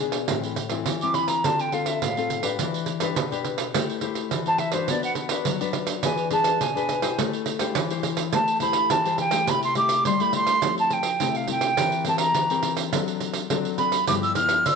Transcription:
Already playing: B2
0.00 B3 D4 G#4
0.12 pandeiro
0.28 A2 E3 C4 E4, pandeiro
0.43 pandeiro
0.56 pandeiro
0.69 E3 C4 E4, pandeiro
0.86 E3, pandeiro
1.01 E3 C4 E4 D6, pandeiro
1.14 B5, pandeiro
1.28 A#5, pandeiro
1.44 D3 C4 F4 A4 A5, pandeiro
1.59 G5, pandeiro
1.72 C4 F4 A4 F5, pandeiro
1.86 E5, pandeiro
2.02 A2 F5, pandeiro
2.17 C4 F4 A4, pandeiro
2.30 pandeiro
2.43 D4 G4 B4, pandeiro
2.59 E3, pandeiro
2.74 pandeiro
2.86 pandeiro
3.00 D4 G4 B4, pandeiro
3.16 B2, pandeiro
3.31 D4 G4 B4, pandeiro
3.45 pandeiro
3.58 pandeiro
3.74 A3 E4 G4 C5, pandeiro
3.90 pandeiro
4.01 E4 G4 C5, pandeiro
4.15 pandeiro
4.31 E3, pandeiro
4.46 E4 G4 C5 A5, pandeiro
4.58 E5, pandeiro
4.72 D4 F#4 B4 C5, pandeiro
4.88 B3 D5, pandeiro
5.03 F#5, pandeiro
5.15 pandeiro
5.29 D4 F#4 B4, pandeiro
5.45 F#3, pandeiro
5.60 D4 F#4 B4, pandeiro
5.73 pandeiro
5.87 pandeiro
6.03 E3 D4 G#4 B4 G#5, pandeiro
6.18 pandeiro
6.31 D4 G#4 B4 A5, pandeiro
6.44 pandeiro
6.60 B2 G#5, pandeiro
6.75 D4 G#4 B4, pandeiro
6.89 pandeiro
7.02 E4 G4 C5, pandeiro
7.18 A3, pandeiro
7.33 pandeiro
7.46 pandeiro
7.59 E4 G4 C5, pandeiro
7.75 E3, pandeiro
7.90 E4 G4 C5, pandeiro
8.03 pandeiro
8.17 pandeiro
8.33 A3 A5, pandeiro
8.48 pandeiro
8.60 E4 G4 C5 B5, pandeiro
8.73 pandeiro
8.90 E3 A5, pandeiro
9.05 E4 G4 C5, pandeiro
9.18 G5, pandeiro
9.31 A3 E4 G4, pandeiro
9.47 C3 B5, pandeiro
9.63 C6, pandeiro
9.75 A3 E4 G4 D6, pandeiro
9.89 pandeiro
10.05 G3 C6, pandeiro
10.20 A3 E4 G4 B5, pandeiro
10.33 C6, pandeiro
10.47 pandeiro
10.62 F3 A3 C4 E4, pandeiro
10.78 A5, pandeiro
10.90 G5, pandeiro
11.03 pandeiro
11.20 C3 A3 C4 E4, pandeiro
11.35 F5, pandeiro
11.47 A3 C4 E4 G5, pandeiro
11.61 pandeiro
11.77 E3 C4 G4 A#4, pandeiro
11.92 pandeiro
12.05 C4 G4 A#4 A5, pandeiro
12.18 A#5, pandeiro
12.34 E3, pandeiro
12.50 C4 G4 A#4, pandeiro
12.63 pandeiro
12.77 pandeiro
12.92 F#3 C4 D4 A4, pandeiro
13.08 pandeiro
13.20 pandeiro
13.34 pandeiro
13.50 F#3 C4 D4 A4, pandeiro
13.65 pandeiro
13.78 C4 D4 A4 B5, pandeiro
13.92 pandeiro
14.07 G2 F3 B3 E4 D6, pandeiro
14.23 E6, pandeiro
14.35 F3 B3 E4 F6, pandeiro
14.49 pandeiro
14.66 D3 E6, pandeiro

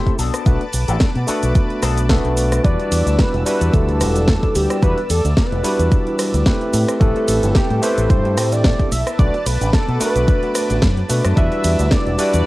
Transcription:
Already playing: A3 C4 E4 G4 A4 C5 B5
0.07 kick, closed hi-hat
0.19 B1 B3 D4 F#4 A4 B4 A5 D6, open hi-hat, shaker
0.34 cross-stick, closed hi-hat, shaker
0.46 B1 A3 B3 D4 F#4 B4, kick, closed hi-hat, shaker
0.61 closed hi-hat
0.73 B1, muted clean electric guitar stroke, open hi-hat, shaker
0.88 A1 B3 D4 F#4 A4, closed hi-hat, shaker
1.00 kick, snare, closed hi-hat, shaker
1.16 B2, closed hi-hat
1.27 A3 B3 D4 F#4 A4 B4, muted fingered electric bass stroke, open hi-hat, shaker
1.43 B1, closed hi-hat, shaker
1.55 muted clean electric guitar stroke, kick, closed hi-hat, shaker
1.70 closed hi-hat
1.82 B1 B3 D4 F#4 A4, cross-stick, open hi-hat, shaker
1.98 closed hi-hat, shaker
2.09 A3 B3 D4 F#4 A4 B4, kick, snare, closed hi-hat, shaker
2.25 B1, closed hi-hat
2.37 open hi-hat, shaker
2.52 muted clean electric guitar stroke, cross-stick, closed hi-hat, shaker
2.63 E2 D3 G3 D4 E4 F#4 B4 D5 E6, kick, closed hi-hat, shaker
2.79 E3, closed hi-hat
2.92 E2 G3, open hi-hat, ride, shaker
3.06 D2 D3, closed hi-hat, shaker
3.19 B4, kick, snare, closed hi-hat, shaker
3.34 E1 E3, closed hi-hat
3.45 G3 D4 E4 F#4 B4, open hi-hat, ride, shaker
3.61 E2 B3, closed hi-hat, shaker
3.73 D2 D3 A4, kick, closed hi-hat, shaker
3.89 E3, closed hi-hat
4.01 E1 G3, cross-stick, open hi-hat, ride, shaker
4.16 D3, closed hi-hat, shaker
4.28 kick, snare, closed hi-hat, shaker
4.43 E3, kick, closed hi-hat
4.55 D2 G3 G4, open hi-hat, ride, shaker
4.70 B3, cross-stick, closed hi-hat, shaker
4.82 E2 D3 G3 D4 E4 F#4 B4, kick, closed hi-hat, shaker
4.98 E3, closed hi-hat
5.10 E2 G3 A4, open hi-hat, ride, shaker
5.24 D2 D3, closed hi-hat, shaker
5.37 D3 B4, kick, snare, closed hi-hat, shaker
5.52 E1 E3, closed hi-hat
5.63 G3 D4 E4 F#4 B4, muted fingered electric bass stroke, open hi-hat, ride, shaker
5.79 E2 B3, closed hi-hat, shaker
5.92 D3, kick, closed hi-hat, shaker
6.07 E3, closed hi-hat
6.19 G3, cross-stick, open hi-hat, ride, shaker
6.34 D2 D3, closed hi-hat, shaker
6.46 D3 A3 C4 E4 G4 B4, kick, snare, closed hi-hat, shaker
6.61 E3, closed hi-hat
6.73 A2 A3 A4, open hi-hat, ride, shaker
6.88 C4, cross-stick, closed hi-hat, shaker
7.00 A1 E3 A3 C4 E4 G4 A4 B4, kick, closed hi-hat, shaker
7.16 G3, closed hi-hat
7.28 A1 A3, open hi-hat, ride, shaker
7.43 G1 E3, closed hi-hat, shaker
7.55 E3 G4, kick, snare, closed hi-hat, shaker
7.70 A2 G3, closed hi-hat
7.82 A3 C4 E4 G4 B4 C5, open hi-hat, ride, shaker
7.98 A1 C4, closed hi-hat, shaker
8.10 G2 E3 C5, kick, closed hi-hat, shaker
8.25 G3, closed hi-hat
8.37 A2 A3, cross-stick, open hi-hat, ride, shaker
8.52 E3 D5, closed hi-hat, shaker
8.64 E3, kick, snare, closed hi-hat, shaker
8.79 G3, kick, closed hi-hat
8.92 B1 A3 B4 E5 A5 D6, open hi-hat, ride, shaker
9.07 B3, cross-stick, closed hi-hat, shaker
9.18 B1 D3 A3 B3 D4 F#4 B4 D5, kick, closed hi-hat, shaker
9.34 F#3, closed hi-hat
9.46 B1 A3 B4, open hi-hat, ride, shaker
9.61 A1 D3, closed hi-hat, shaker
9.73 D3 A4, kick, snare, closed hi-hat, shaker
9.88 B2 F#3, closed hi-hat
10.00 A3 B3 D4 F#4 B4, muted fingered electric bass stroke, open hi-hat, ride, shaker
10.16 B1 B3, closed hi-hat, shaker
10.28 D3, kick, closed hi-hat, shaker
10.43 F#3, closed hi-hat
10.55 A3, cross-stick, open hi-hat, ride, shaker
10.70 A1 D3, closed hi-hat, shaker
10.82 F#2 D3, kick, snare, closed hi-hat, shaker
10.97 F#3, closed hi-hat
11.09 B2 A3 B3 D4 F#4 B4, open hi-hat, ride, shaker
11.25 F#2 B3, cross-stick, closed hi-hat, shaker
11.36 E2 D3 G3 D4 E4 F#4 B4 D5 E5 E6, kick, closed hi-hat, shaker
11.52 E3, closed hi-hat
11.64 E2 G3, open hi-hat, ride, shaker
11.79 D2 D3, closed hi-hat, shaker
11.91 D3 D5, kick, snare, closed hi-hat, shaker
12.07 E1 E3, closed hi-hat
12.18 G3 D4 E4 F#4 B4 D5, open hi-hat, ride, shaker
12.34 E2 B3, closed hi-hat, shaker

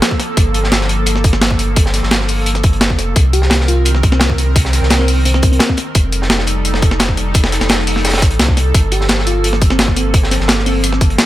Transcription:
Already playing: F3 A#3 A4
0.02 snare, closed hi-hat
0.11 kick
0.20 snare, closed hi-hat
0.37 G1, kick, closed hi-hat
0.54 closed hi-hat
0.64 snare
0.72 snare, closed hi-hat
0.81 snare
0.89 closed hi-hat
1.06 closed hi-hat
1.16 snare
1.24 kick, closed hi-hat
1.33 snare
1.42 snare, closed hi-hat
1.51 kick
1.59 closed hi-hat
1.76 kick, closed hi-hat
1.86 snare
1.94 snare, closed hi-hat
2.03 G1, snare
2.11 snare, closed hi-hat
2.20 snare
2.28 closed hi-hat, open hi-hat
2.46 closed hi-hat
2.55 snare, closed hi-hat
2.63 G1, kick, closed hi-hat
2.73 closed hi-hat
2.81 snare, closed hi-hat
2.90 kick
2.99 F1, snare, closed hi-hat
3.16 C2 D#3 C4 A#4, kick, closed hi-hat
3.33 G4, closed hi-hat
3.42 snare
3.50 snare, closed hi-hat
3.60 snare
3.68 F4, closed hi-hat
3.85 closed hi-hat
3.95 snare
4.03 kick, closed hi-hat
4.12 C4, snare
4.20 C4, snare, closed hi-hat
4.30 kick
4.38 closed hi-hat
4.56 kick, closed hi-hat
4.65 snare
4.73 snare, closed hi-hat
4.82 C2, snare
4.90 snare, closed hi-hat
4.99 C4, snare
5.08 closed hi-hat, open hi-hat
5.25 C4, closed hi-hat
5.34 C4, snare
5.42 kick, closed hi-hat
5.52 C4, closed hi-hat
5.59 snare, closed hi-hat
5.69 kick
5.77 snare, closed hi-hat
5.95 F1 G3 D#4 A4, kick, closed hi-hat
6.12 closed hi-hat
6.22 snare
6.30 snare, closed hi-hat
6.39 snare
6.47 closed hi-hat
6.65 closed hi-hat
6.74 snare
6.82 kick, closed hi-hat
6.91 snare
7.00 snare, closed hi-hat
7.09 kick
7.17 closed hi-hat
7.34 kick, closed hi-hat
7.44 snare
7.52 snare, closed hi-hat
7.61 F1, snare, closed hi-hat
7.69 snare, closed hi-hat
7.79 snare
7.87 closed hi-hat, open hi-hat
7.96 snare
8.05 snare, closed hi-hat
8.09 snare, closed hi-hat
8.13 snare, closed hi-hat
8.18 snare, closed hi-hat
8.22 A1, kick, closed hi-hat
8.31 closed hi-hat
8.39 C2, snare, closed hi-hat
8.48 kick
8.57 snare, closed hi-hat
8.74 G1 F3 A#3, kick, closed hi-hat
8.92 G4, closed hi-hat
9.01 snare
9.09 snare, closed hi-hat
9.19 snare
9.27 F4, closed hi-hat
9.44 closed hi-hat
9.53 snare
9.62 kick, closed hi-hat
9.70 C4, snare
9.79 snare, closed hi-hat
9.88 kick
9.96 C4, closed hi-hat
10.14 kick, closed hi-hat
10.23 snare
10.31 C4, snare, closed hi-hat
10.40 G1, snare
10.48 snare, closed hi-hat
10.59 snare
10.66 C4, closed hi-hat, open hi-hat
10.84 closed hi-hat
10.93 snare
11.01 kick, closed hi-hat
11.10 closed hi-hat
11.18 snare, closed hi-hat

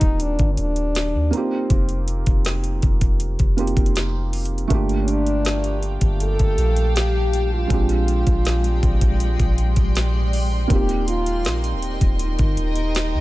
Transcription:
Already playing: D#3 A#3 C4 D#4 F4 G4 G5
0.01 D#1, kick, closed hi-hat
0.20 D4, closed hi-hat
0.39 G1, kick, closed hi-hat
0.53 C#4
0.57 D#1 D4, closed hi-hat
0.76 closed hi-hat
0.95 snare, closed hi-hat
1.14 D#2
1.31 A#3 C4 D#4, closed hi-hat
1.35 F4 G4
1.70 F1, kick, closed hi-hat
1.89 closed hi-hat
2.08 closed hi-hat
2.26 F1, kick, closed hi-hat
2.45 snare, closed hi-hat
2.64 closed hi-hat
2.82 F1, kick, closed hi-hat
3.01 kick, closed hi-hat
3.20 closed hi-hat
3.39 F1, kick, closed hi-hat
3.57 A#3 C4 D#4 F4 G4, closed hi-hat
3.67 closed hi-hat
3.77 F1, kick, closed hi-hat
3.86 closed hi-hat
3.96 snare, closed hi-hat
4.33 closed hi-hat, open hi-hat
4.45 closed hi-hat
4.58 closed hi-hat
4.68 G1 A3 A#3 D4 G4 F5 G5 A5, kick, closed hi-hat
4.73 F4 G4
4.89 closed hi-hat
5.02 C#4
5.08 D4, closed hi-hat
5.26 closed hi-hat
5.45 snare, closed hi-hat
5.64 closed hi-hat
5.82 closed hi-hat
6.01 G1, kick, closed hi-hat
6.20 A4, closed hi-hat
6.39 G1, kick, closed hi-hat
6.57 A#1, closed hi-hat
6.76 closed hi-hat
6.96 G4, snare, closed hi-hat
7.33 closed hi-hat
7.53 F4
7.67 A#1 G#3 C4 D4 D5 G5 C6, kick, closed hi-hat
7.72 F4 G4
7.89 closed hi-hat
8.08 closed hi-hat
8.27 A#1, kick, closed hi-hat
8.45 snare, closed hi-hat
8.64 closed hi-hat
8.83 A#1, kick, closed hi-hat
9.01 kick, closed hi-hat
9.20 closed hi-hat
9.39 A#1, kick, closed hi-hat
9.58 closed hi-hat
9.76 A#1, kick, closed hi-hat
9.95 snare, closed hi-hat
10.33 open hi-hat
10.68 D#1 A#3 C4 D#4 G4 A#4 D#5 G5, kick, closed hi-hat
10.72 F4 G4
10.89 closed hi-hat
11.08 F4, closed hi-hat
11.26 closed hi-hat
11.45 A#1, snare, closed hi-hat
11.64 closed hi-hat
11.73 D#1
11.82 closed hi-hat
12.01 D#1, kick, closed hi-hat
12.19 D#4, closed hi-hat
12.39 G1, kick, closed hi-hat
12.57 D#1, closed hi-hat
12.76 closed hi-hat
12.95 snare, closed hi-hat
13.14 D#2

